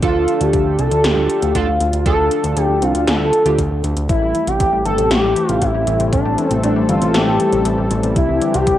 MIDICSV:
0, 0, Header, 1, 7, 480
1, 0, Start_track
1, 0, Key_signature, -1, "minor"
1, 0, Tempo, 508475
1, 24, Time_signature, 4, 2, 24, 8
1, 8292, End_track
2, 0, Start_track
2, 0, Title_t, "Analog synth lead"
2, 0, Program_c, 0, 81
2, 25, Note_on_c, 0, 65, 99
2, 385, Note_on_c, 0, 67, 104
2, 399, Note_off_c, 0, 65, 0
2, 746, Note_on_c, 0, 69, 105
2, 760, Note_off_c, 0, 67, 0
2, 985, Note_on_c, 0, 67, 108
2, 999, Note_off_c, 0, 69, 0
2, 1466, Note_on_c, 0, 65, 97
2, 1481, Note_off_c, 0, 67, 0
2, 1942, Note_off_c, 0, 65, 0
2, 1947, Note_on_c, 0, 69, 110
2, 2426, Note_on_c, 0, 67, 95
2, 2440, Note_off_c, 0, 69, 0
2, 2666, Note_on_c, 0, 65, 86
2, 2680, Note_off_c, 0, 67, 0
2, 2905, Note_on_c, 0, 69, 98
2, 2919, Note_off_c, 0, 65, 0
2, 3624, Note_off_c, 0, 69, 0
2, 3863, Note_on_c, 0, 64, 105
2, 4223, Note_on_c, 0, 67, 110
2, 4238, Note_off_c, 0, 64, 0
2, 4577, Note_off_c, 0, 67, 0
2, 4583, Note_on_c, 0, 69, 108
2, 4807, Note_off_c, 0, 69, 0
2, 4824, Note_on_c, 0, 67, 112
2, 5182, Note_off_c, 0, 67, 0
2, 5182, Note_on_c, 0, 65, 112
2, 5303, Note_on_c, 0, 64, 99
2, 5317, Note_off_c, 0, 65, 0
2, 5777, Note_off_c, 0, 64, 0
2, 5782, Note_on_c, 0, 62, 98
2, 6230, Note_off_c, 0, 62, 0
2, 6264, Note_on_c, 0, 62, 89
2, 6487, Note_off_c, 0, 62, 0
2, 6505, Note_on_c, 0, 65, 91
2, 6744, Note_on_c, 0, 67, 95
2, 6758, Note_off_c, 0, 65, 0
2, 7464, Note_off_c, 0, 67, 0
2, 7704, Note_on_c, 0, 64, 107
2, 8065, Note_on_c, 0, 67, 111
2, 8079, Note_off_c, 0, 64, 0
2, 8292, Note_off_c, 0, 67, 0
2, 8292, End_track
3, 0, Start_track
3, 0, Title_t, "Analog polysynth"
3, 0, Program_c, 1, 90
3, 24, Note_on_c, 1, 62, 94
3, 24, Note_on_c, 1, 65, 86
3, 24, Note_on_c, 1, 69, 107
3, 1435, Note_off_c, 1, 62, 0
3, 1435, Note_off_c, 1, 65, 0
3, 1435, Note_off_c, 1, 69, 0
3, 1464, Note_on_c, 1, 62, 93
3, 1464, Note_on_c, 1, 65, 87
3, 1464, Note_on_c, 1, 69, 105
3, 1567, Note_off_c, 1, 65, 0
3, 1568, Note_off_c, 1, 62, 0
3, 1568, Note_off_c, 1, 69, 0
3, 1944, Note_on_c, 1, 62, 92
3, 1944, Note_on_c, 1, 65, 84
3, 1944, Note_on_c, 1, 69, 106
3, 3240, Note_off_c, 1, 62, 0
3, 3240, Note_off_c, 1, 65, 0
3, 3240, Note_off_c, 1, 69, 0
3, 3263, Note_on_c, 1, 62, 88
3, 3263, Note_on_c, 1, 65, 84
3, 3263, Note_on_c, 1, 67, 100
3, 3367, Note_off_c, 1, 62, 0
3, 3367, Note_off_c, 1, 65, 0
3, 3367, Note_off_c, 1, 67, 0
3, 8292, End_track
4, 0, Start_track
4, 0, Title_t, "Analog synth pad"
4, 0, Program_c, 2, 89
4, 3864, Note_on_c, 2, 52, 82
4, 3864, Note_on_c, 2, 55, 75
4, 3864, Note_on_c, 2, 57, 77
4, 3864, Note_on_c, 2, 60, 77
4, 3864, Note_on_c, 2, 67, 91
4, 5765, Note_off_c, 2, 67, 0
4, 5782, Note_on_c, 2, 69, 95
4, 7666, Note_off_c, 2, 57, 0
4, 7666, Note_off_c, 2, 60, 0
4, 7684, Note_off_c, 2, 69, 0
4, 7705, Note_on_c, 2, 60, 77
4, 7705, Note_on_c, 2, 67, 94
4, 7706, Note_on_c, 2, 62, 78
4, 8292, Note_off_c, 2, 52, 0
4, 8292, Note_off_c, 2, 55, 0
4, 8292, Note_off_c, 2, 60, 0
4, 8292, Note_off_c, 2, 62, 0
4, 8292, Note_off_c, 2, 67, 0
4, 8292, End_track
5, 0, Start_track
5, 0, Title_t, "Synth arpeggio sound"
5, 0, Program_c, 3, 84
5, 3863, Note_on_c, 3, 57, 82
5, 3917, Note_off_c, 3, 57, 0
5, 3983, Note_on_c, 3, 55, 74
5, 4037, Note_off_c, 3, 55, 0
5, 4103, Note_on_c, 3, 52, 72
5, 4218, Note_off_c, 3, 52, 0
5, 4223, Note_on_c, 3, 48, 74
5, 4337, Note_off_c, 3, 48, 0
5, 4343, Note_on_c, 3, 57, 80
5, 4397, Note_off_c, 3, 57, 0
5, 4463, Note_on_c, 3, 55, 75
5, 4517, Note_off_c, 3, 55, 0
5, 4584, Note_on_c, 3, 52, 76
5, 4673, Note_off_c, 3, 52, 0
5, 4702, Note_on_c, 3, 48, 76
5, 4792, Note_off_c, 3, 48, 0
5, 4823, Note_on_c, 3, 57, 82
5, 4877, Note_off_c, 3, 57, 0
5, 4944, Note_on_c, 3, 55, 77
5, 4997, Note_off_c, 3, 55, 0
5, 5064, Note_on_c, 3, 52, 73
5, 5178, Note_off_c, 3, 52, 0
5, 5183, Note_on_c, 3, 48, 73
5, 5298, Note_off_c, 3, 48, 0
5, 5303, Note_on_c, 3, 57, 77
5, 5357, Note_off_c, 3, 57, 0
5, 5424, Note_on_c, 3, 55, 75
5, 5478, Note_off_c, 3, 55, 0
5, 5544, Note_on_c, 3, 52, 76
5, 5633, Note_off_c, 3, 52, 0
5, 5665, Note_on_c, 3, 48, 77
5, 5753, Note_off_c, 3, 48, 0
5, 5784, Note_on_c, 3, 57, 81
5, 5838, Note_off_c, 3, 57, 0
5, 5904, Note_on_c, 3, 55, 74
5, 5957, Note_off_c, 3, 55, 0
5, 6023, Note_on_c, 3, 52, 76
5, 6138, Note_off_c, 3, 52, 0
5, 6143, Note_on_c, 3, 48, 76
5, 6258, Note_off_c, 3, 48, 0
5, 6263, Note_on_c, 3, 57, 82
5, 6317, Note_off_c, 3, 57, 0
5, 6382, Note_on_c, 3, 55, 76
5, 6436, Note_off_c, 3, 55, 0
5, 6503, Note_on_c, 3, 52, 76
5, 6593, Note_off_c, 3, 52, 0
5, 6623, Note_on_c, 3, 48, 78
5, 6713, Note_off_c, 3, 48, 0
5, 6743, Note_on_c, 3, 57, 83
5, 6797, Note_off_c, 3, 57, 0
5, 6863, Note_on_c, 3, 55, 75
5, 6917, Note_off_c, 3, 55, 0
5, 6982, Note_on_c, 3, 52, 74
5, 7097, Note_off_c, 3, 52, 0
5, 7102, Note_on_c, 3, 48, 75
5, 7217, Note_off_c, 3, 48, 0
5, 7222, Note_on_c, 3, 57, 77
5, 7276, Note_off_c, 3, 57, 0
5, 7342, Note_on_c, 3, 55, 74
5, 7397, Note_off_c, 3, 55, 0
5, 7463, Note_on_c, 3, 52, 78
5, 7553, Note_off_c, 3, 52, 0
5, 7583, Note_on_c, 3, 48, 77
5, 7673, Note_off_c, 3, 48, 0
5, 7704, Note_on_c, 3, 55, 78
5, 7757, Note_off_c, 3, 55, 0
5, 7824, Note_on_c, 3, 52, 75
5, 7877, Note_off_c, 3, 52, 0
5, 7944, Note_on_c, 3, 50, 75
5, 8058, Note_off_c, 3, 50, 0
5, 8064, Note_on_c, 3, 48, 75
5, 8178, Note_off_c, 3, 48, 0
5, 8183, Note_on_c, 3, 55, 82
5, 8237, Note_off_c, 3, 55, 0
5, 8292, End_track
6, 0, Start_track
6, 0, Title_t, "Analog synth bass"
6, 0, Program_c, 4, 38
6, 24, Note_on_c, 4, 38, 97
6, 131, Note_off_c, 4, 38, 0
6, 144, Note_on_c, 4, 38, 74
6, 251, Note_off_c, 4, 38, 0
6, 385, Note_on_c, 4, 38, 81
6, 492, Note_off_c, 4, 38, 0
6, 504, Note_on_c, 4, 38, 98
6, 611, Note_off_c, 4, 38, 0
6, 624, Note_on_c, 4, 38, 73
6, 731, Note_off_c, 4, 38, 0
6, 743, Note_on_c, 4, 36, 95
6, 851, Note_off_c, 4, 36, 0
6, 864, Note_on_c, 4, 38, 82
6, 971, Note_off_c, 4, 38, 0
6, 983, Note_on_c, 4, 38, 105
6, 1091, Note_off_c, 4, 38, 0
6, 1104, Note_on_c, 4, 38, 74
6, 1211, Note_off_c, 4, 38, 0
6, 1344, Note_on_c, 4, 38, 80
6, 1451, Note_off_c, 4, 38, 0
6, 1464, Note_on_c, 4, 38, 101
6, 1571, Note_off_c, 4, 38, 0
6, 1584, Note_on_c, 4, 38, 75
6, 1691, Note_off_c, 4, 38, 0
6, 1704, Note_on_c, 4, 38, 95
6, 1811, Note_off_c, 4, 38, 0
6, 1823, Note_on_c, 4, 38, 78
6, 1931, Note_off_c, 4, 38, 0
6, 1944, Note_on_c, 4, 38, 96
6, 2051, Note_off_c, 4, 38, 0
6, 2063, Note_on_c, 4, 38, 74
6, 2171, Note_off_c, 4, 38, 0
6, 2303, Note_on_c, 4, 38, 78
6, 2411, Note_off_c, 4, 38, 0
6, 2422, Note_on_c, 4, 38, 99
6, 2530, Note_off_c, 4, 38, 0
6, 2543, Note_on_c, 4, 38, 75
6, 2651, Note_off_c, 4, 38, 0
6, 2663, Note_on_c, 4, 36, 92
6, 2771, Note_off_c, 4, 36, 0
6, 2783, Note_on_c, 4, 38, 79
6, 2891, Note_off_c, 4, 38, 0
6, 2903, Note_on_c, 4, 38, 103
6, 3011, Note_off_c, 4, 38, 0
6, 3023, Note_on_c, 4, 38, 75
6, 3131, Note_off_c, 4, 38, 0
6, 3264, Note_on_c, 4, 38, 83
6, 3371, Note_off_c, 4, 38, 0
6, 3384, Note_on_c, 4, 38, 101
6, 3491, Note_off_c, 4, 38, 0
6, 3503, Note_on_c, 4, 38, 76
6, 3611, Note_off_c, 4, 38, 0
6, 3623, Note_on_c, 4, 38, 97
6, 3731, Note_off_c, 4, 38, 0
6, 3744, Note_on_c, 4, 38, 81
6, 3851, Note_off_c, 4, 38, 0
6, 3864, Note_on_c, 4, 33, 97
6, 3971, Note_off_c, 4, 33, 0
6, 3983, Note_on_c, 4, 33, 73
6, 4091, Note_off_c, 4, 33, 0
6, 4223, Note_on_c, 4, 33, 79
6, 4331, Note_off_c, 4, 33, 0
6, 4344, Note_on_c, 4, 33, 97
6, 4451, Note_off_c, 4, 33, 0
6, 4463, Note_on_c, 4, 33, 74
6, 4571, Note_off_c, 4, 33, 0
6, 4582, Note_on_c, 4, 31, 95
6, 4690, Note_off_c, 4, 31, 0
6, 4701, Note_on_c, 4, 33, 82
6, 4810, Note_off_c, 4, 33, 0
6, 4822, Note_on_c, 4, 33, 100
6, 4930, Note_off_c, 4, 33, 0
6, 4942, Note_on_c, 4, 33, 75
6, 5050, Note_off_c, 4, 33, 0
6, 5183, Note_on_c, 4, 33, 82
6, 5291, Note_off_c, 4, 33, 0
6, 5303, Note_on_c, 4, 33, 101
6, 5411, Note_off_c, 4, 33, 0
6, 5423, Note_on_c, 4, 33, 76
6, 5531, Note_off_c, 4, 33, 0
6, 5543, Note_on_c, 4, 33, 94
6, 5650, Note_off_c, 4, 33, 0
6, 5664, Note_on_c, 4, 33, 81
6, 5771, Note_off_c, 4, 33, 0
6, 5784, Note_on_c, 4, 33, 94
6, 5891, Note_off_c, 4, 33, 0
6, 5903, Note_on_c, 4, 33, 75
6, 6011, Note_off_c, 4, 33, 0
6, 6143, Note_on_c, 4, 33, 82
6, 6251, Note_off_c, 4, 33, 0
6, 6264, Note_on_c, 4, 33, 101
6, 6371, Note_off_c, 4, 33, 0
6, 6384, Note_on_c, 4, 33, 75
6, 6491, Note_off_c, 4, 33, 0
6, 6504, Note_on_c, 4, 31, 95
6, 6611, Note_off_c, 4, 31, 0
6, 6625, Note_on_c, 4, 33, 82
6, 6732, Note_off_c, 4, 33, 0
6, 6744, Note_on_c, 4, 33, 101
6, 6851, Note_off_c, 4, 33, 0
6, 6864, Note_on_c, 4, 33, 74
6, 6971, Note_off_c, 4, 33, 0
6, 7104, Note_on_c, 4, 33, 83
6, 7211, Note_off_c, 4, 33, 0
6, 7224, Note_on_c, 4, 33, 101
6, 7331, Note_off_c, 4, 33, 0
6, 7344, Note_on_c, 4, 33, 77
6, 7451, Note_off_c, 4, 33, 0
6, 7464, Note_on_c, 4, 33, 97
6, 7571, Note_off_c, 4, 33, 0
6, 7584, Note_on_c, 4, 33, 80
6, 7691, Note_off_c, 4, 33, 0
6, 7704, Note_on_c, 4, 36, 94
6, 7811, Note_off_c, 4, 36, 0
6, 7825, Note_on_c, 4, 36, 73
6, 7932, Note_off_c, 4, 36, 0
6, 8065, Note_on_c, 4, 36, 82
6, 8172, Note_off_c, 4, 36, 0
6, 8184, Note_on_c, 4, 36, 98
6, 8291, Note_off_c, 4, 36, 0
6, 8292, End_track
7, 0, Start_track
7, 0, Title_t, "Drums"
7, 24, Note_on_c, 9, 36, 117
7, 24, Note_on_c, 9, 42, 91
7, 118, Note_off_c, 9, 36, 0
7, 118, Note_off_c, 9, 42, 0
7, 263, Note_on_c, 9, 42, 69
7, 357, Note_off_c, 9, 42, 0
7, 384, Note_on_c, 9, 42, 64
7, 478, Note_off_c, 9, 42, 0
7, 503, Note_on_c, 9, 42, 91
7, 504, Note_on_c, 9, 36, 110
7, 598, Note_off_c, 9, 36, 0
7, 598, Note_off_c, 9, 42, 0
7, 743, Note_on_c, 9, 42, 64
7, 837, Note_off_c, 9, 42, 0
7, 863, Note_on_c, 9, 42, 64
7, 958, Note_off_c, 9, 42, 0
7, 983, Note_on_c, 9, 38, 121
7, 983, Note_on_c, 9, 42, 92
7, 1078, Note_off_c, 9, 38, 0
7, 1078, Note_off_c, 9, 42, 0
7, 1223, Note_on_c, 9, 42, 66
7, 1318, Note_off_c, 9, 42, 0
7, 1344, Note_on_c, 9, 42, 64
7, 1438, Note_off_c, 9, 42, 0
7, 1464, Note_on_c, 9, 36, 62
7, 1464, Note_on_c, 9, 42, 88
7, 1558, Note_off_c, 9, 36, 0
7, 1558, Note_off_c, 9, 42, 0
7, 1704, Note_on_c, 9, 42, 65
7, 1798, Note_off_c, 9, 42, 0
7, 1824, Note_on_c, 9, 42, 66
7, 1918, Note_off_c, 9, 42, 0
7, 1944, Note_on_c, 9, 36, 115
7, 1944, Note_on_c, 9, 42, 87
7, 2038, Note_off_c, 9, 36, 0
7, 2038, Note_off_c, 9, 42, 0
7, 2184, Note_on_c, 9, 42, 65
7, 2278, Note_off_c, 9, 42, 0
7, 2305, Note_on_c, 9, 42, 62
7, 2399, Note_off_c, 9, 42, 0
7, 2424, Note_on_c, 9, 42, 88
7, 2518, Note_off_c, 9, 42, 0
7, 2664, Note_on_c, 9, 42, 60
7, 2758, Note_off_c, 9, 42, 0
7, 2784, Note_on_c, 9, 42, 62
7, 2878, Note_off_c, 9, 42, 0
7, 2904, Note_on_c, 9, 38, 116
7, 2904, Note_on_c, 9, 42, 88
7, 2998, Note_off_c, 9, 38, 0
7, 2998, Note_off_c, 9, 42, 0
7, 3144, Note_on_c, 9, 42, 62
7, 3239, Note_off_c, 9, 42, 0
7, 3264, Note_on_c, 9, 42, 62
7, 3358, Note_off_c, 9, 42, 0
7, 3384, Note_on_c, 9, 36, 61
7, 3385, Note_on_c, 9, 42, 88
7, 3478, Note_off_c, 9, 36, 0
7, 3479, Note_off_c, 9, 42, 0
7, 3625, Note_on_c, 9, 42, 63
7, 3719, Note_off_c, 9, 42, 0
7, 3744, Note_on_c, 9, 42, 62
7, 3839, Note_off_c, 9, 42, 0
7, 3864, Note_on_c, 9, 36, 110
7, 3864, Note_on_c, 9, 42, 82
7, 3958, Note_off_c, 9, 36, 0
7, 3959, Note_off_c, 9, 42, 0
7, 4104, Note_on_c, 9, 42, 62
7, 4198, Note_off_c, 9, 42, 0
7, 4224, Note_on_c, 9, 42, 62
7, 4318, Note_off_c, 9, 42, 0
7, 4343, Note_on_c, 9, 42, 84
7, 4344, Note_on_c, 9, 36, 103
7, 4437, Note_off_c, 9, 42, 0
7, 4438, Note_off_c, 9, 36, 0
7, 4583, Note_on_c, 9, 42, 60
7, 4678, Note_off_c, 9, 42, 0
7, 4703, Note_on_c, 9, 42, 62
7, 4798, Note_off_c, 9, 42, 0
7, 4823, Note_on_c, 9, 38, 114
7, 4823, Note_on_c, 9, 42, 87
7, 4917, Note_off_c, 9, 38, 0
7, 4917, Note_off_c, 9, 42, 0
7, 5063, Note_on_c, 9, 42, 62
7, 5157, Note_off_c, 9, 42, 0
7, 5183, Note_on_c, 9, 42, 60
7, 5277, Note_off_c, 9, 42, 0
7, 5302, Note_on_c, 9, 42, 84
7, 5303, Note_on_c, 9, 36, 59
7, 5396, Note_off_c, 9, 42, 0
7, 5398, Note_off_c, 9, 36, 0
7, 5542, Note_on_c, 9, 42, 61
7, 5637, Note_off_c, 9, 42, 0
7, 5663, Note_on_c, 9, 42, 61
7, 5757, Note_off_c, 9, 42, 0
7, 5783, Note_on_c, 9, 36, 108
7, 5784, Note_on_c, 9, 42, 85
7, 5878, Note_off_c, 9, 36, 0
7, 5878, Note_off_c, 9, 42, 0
7, 6024, Note_on_c, 9, 42, 62
7, 6118, Note_off_c, 9, 42, 0
7, 6143, Note_on_c, 9, 42, 60
7, 6237, Note_off_c, 9, 42, 0
7, 6263, Note_on_c, 9, 42, 84
7, 6358, Note_off_c, 9, 42, 0
7, 6503, Note_on_c, 9, 42, 60
7, 6598, Note_off_c, 9, 42, 0
7, 6623, Note_on_c, 9, 42, 61
7, 6717, Note_off_c, 9, 42, 0
7, 6743, Note_on_c, 9, 38, 114
7, 6743, Note_on_c, 9, 42, 85
7, 6837, Note_off_c, 9, 38, 0
7, 6837, Note_off_c, 9, 42, 0
7, 6982, Note_on_c, 9, 42, 61
7, 7077, Note_off_c, 9, 42, 0
7, 7103, Note_on_c, 9, 42, 59
7, 7197, Note_off_c, 9, 42, 0
7, 7224, Note_on_c, 9, 42, 86
7, 7318, Note_off_c, 9, 42, 0
7, 7463, Note_on_c, 9, 42, 62
7, 7558, Note_off_c, 9, 42, 0
7, 7584, Note_on_c, 9, 42, 61
7, 7678, Note_off_c, 9, 42, 0
7, 7704, Note_on_c, 9, 36, 103
7, 7704, Note_on_c, 9, 42, 88
7, 7798, Note_off_c, 9, 36, 0
7, 7798, Note_off_c, 9, 42, 0
7, 7944, Note_on_c, 9, 42, 64
7, 8038, Note_off_c, 9, 42, 0
7, 8063, Note_on_c, 9, 42, 63
7, 8158, Note_off_c, 9, 42, 0
7, 8183, Note_on_c, 9, 42, 86
7, 8184, Note_on_c, 9, 36, 98
7, 8277, Note_off_c, 9, 42, 0
7, 8278, Note_off_c, 9, 36, 0
7, 8292, End_track
0, 0, End_of_file